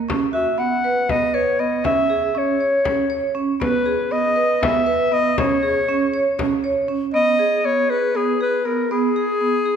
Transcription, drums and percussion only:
0.10 frame drum medium
1.09 frame drum medium
1.85 frame drum medium
2.85 frame drum medium
3.61 frame drum medium
4.63 frame drum medium
5.38 frame drum medium
6.39 frame drum medium
6.64 frame drum soft

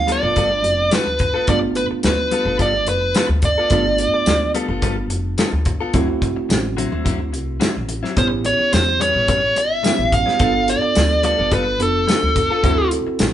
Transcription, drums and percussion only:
0.08 closed hi-hat medium
0.36 kick medium
0.36 closed hi-hat medium
0.64 closed hi-hat medium
0.91 snare loud
0.91 closed hi-hat medium
0.91 tambourine loud
1.19 kick medium
1.19 closed hi-hat medium
1.47 kick loud
1.47 closed hi-hat medium
1.75 closed hi-hat medium
2.03 snare loud
2.03 closed hi-hat medium
2.03 tambourine loud
2.31 closed hi-hat medium
2.59 kick medium
2.59 closed hi-hat medium
2.87 closed hi-hat medium
3.15 snare loud
3.15 closed hi-hat medium
3.15 tambourine loud
3.42 kick medium
3.42 closed hi-hat medium
3.70 kick loud
3.70 closed hi-hat medium
3.98 closed hi-hat medium
4.26 snare loud
4.26 closed hi-hat medium
4.26 tambourine loud
4.55 closed hi-hat medium
4.82 kick medium
4.82 closed hi-hat medium
5.10 closed hi-hat medium
5.38 snare loud
5.38 closed hi-hat medium
5.38 tambourine loud
5.65 kick medium
5.65 closed hi-hat medium
5.94 kick loud
5.94 closed hi-hat medium
6.22 kick medium
6.22 closed hi-hat medium
6.50 snare loud
6.50 closed hi-hat medium
6.50 tambourine loud
6.78 closed hi-hat medium
7.06 kick medium
7.06 closed hi-hat medium
7.34 closed hi-hat medium
7.61 snare loud
7.61 closed hi-hat medium
7.61 tambourine loud
7.89 closed hi-hat medium
8.05 snare soft
8.17 kick loud
8.17 closed hi-hat medium
8.45 closed hi-hat medium
8.73 snare loud
8.73 closed hi-hat medium
8.73 tambourine loud
9.01 closed hi-hat medium
9.28 kick medium
9.28 closed hi-hat medium
9.56 closed hi-hat medium
9.84 snare loud
9.84 closed hi-hat medium
9.84 tambourine loud
10.12 kick medium
10.12 closed hi-hat medium
10.28 snare soft
10.39 kick loud
10.39 closed hi-hat medium
10.68 closed hi-hat medium
10.95 snare loud
10.95 closed hi-hat medium
10.95 tambourine loud
11.23 closed hi-hat medium
11.52 kick medium
11.52 closed hi-hat medium
11.80 closed hi-hat medium
12.09 snare loud
12.09 closed hi-hat medium
12.09 tambourine loud
12.36 kick medium
12.36 closed hi-hat medium
12.64 kick loud
12.64 closed hi-hat medium
12.91 closed hi-hat medium
13.19 snare loud
13.19 closed hi-hat medium
13.19 tambourine loud

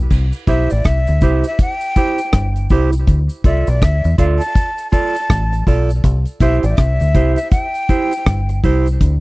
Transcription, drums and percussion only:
0.10 kick medium
0.10 crash medium
0.10 cabasa medium
0.32 closed hi-hat soft
0.32 cabasa soft
0.47 kick loud
0.47 closed hi-hat medium
0.47 cabasa soft
0.70 closed hi-hat medium
0.70 cabasa medium
0.84 kick medium
0.84 cross-stick loud
0.84 closed hi-hat medium
0.84 cabasa medium
1.07 closed hi-hat soft
1.07 cabasa soft
1.21 kick loud
1.21 closed hi-hat medium
1.21 cabasa medium
1.44 closed hi-hat medium
1.44 cabasa medium
1.59 kick loud
1.59 closed hi-hat medium
1.59 cabasa medium
1.81 closed hi-hat medium
1.81 cabasa medium
1.96 kick medium
1.96 closed hi-hat medium
1.96 cabasa medium
2.18 closed hi-hat medium
2.18 cabasa medium
2.33 kick loud
2.33 cross-stick loud
2.33 closed hi-hat medium
2.33 cabasa medium
2.56 closed hi-hat medium
2.56 cabasa soft
2.70 kick loud
2.70 open hi-hat medium
2.70 cabasa medium
2.92 closed hi-hat soft
2.92 cabasa medium
3.07 kick medium
3.07 closed hi-hat medium
3.07 cabasa medium
3.29 closed hi-hat soft
3.29 cabasa medium
3.44 kick loud
3.44 closed hi-hat medium
3.44 cabasa soft
3.67 closed hi-hat medium
3.67 cabasa medium
3.82 kick loud
3.82 cross-stick loud
3.82 closed hi-hat medium
3.82 cabasa medium
4.04 closed hi-hat soft
4.04 cabasa soft
4.18 kick loud
4.18 closed hi-hat medium
4.18 cabasa medium
4.41 closed hi-hat medium
4.41 cabasa medium
4.55 kick loud
4.55 closed hi-hat medium
4.55 cabasa medium
4.78 closed hi-hat medium
4.78 cabasa medium
4.92 kick medium
4.92 closed hi-hat medium
4.92 cabasa medium
5.15 closed hi-hat medium
5.15 cabasa medium
5.30 kick loud
5.30 cross-stick loud
5.30 closed hi-hat loud
5.30 cabasa medium
5.53 closed hi-hat medium
5.53 cabasa soft
5.67 kick medium
5.67 open hi-hat medium
5.67 cabasa medium
5.89 closed hi-hat soft
5.89 cabasa medium
6.04 kick loud
6.04 closed hi-hat medium
6.04 cabasa medium
6.25 closed hi-hat soft
6.25 cabasa soft
6.40 kick loud
6.40 closed hi-hat medium
6.40 cabasa soft
6.63 closed hi-hat medium
6.63 cabasa medium
6.77 kick loud
6.77 cross-stick loud
6.77 closed hi-hat medium
6.77 cabasa medium
7.00 closed hi-hat medium
7.00 cabasa medium
7.14 kick loud
7.14 closed hi-hat medium
7.14 cabasa medium
7.36 closed hi-hat medium
7.36 cabasa medium
7.51 kick loud
7.51 closed hi-hat medium
7.51 cabasa medium
7.74 closed hi-hat medium
7.74 cabasa medium
7.88 kick medium
7.88 closed hi-hat medium
7.88 cabasa medium
8.11 closed hi-hat medium
8.11 cabasa medium
8.26 kick loud
8.26 cross-stick loud
8.26 closed hi-hat medium
8.26 cabasa medium
8.49 closed hi-hat medium
8.49 cabasa soft
8.64 kick medium
8.64 open hi-hat medium
8.64 cabasa medium
8.86 closed hi-hat soft
8.86 cabasa medium
9.01 kick medium
9.01 closed hi-hat medium
9.01 cabasa medium

